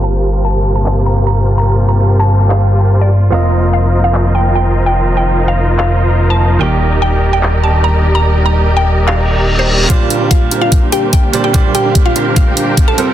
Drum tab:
HH |--------|--------|--------|--------|
CP |----x---|----x---|----x---|----x---|
BD |--------|--------|--------|--------|

HH |--------|--------|xxxxxxxx|xxxxxxxx|
CP |----x---|----x---|--------|--------|
BD |--------|--------|o-o-o-o-|o-o-o-o-|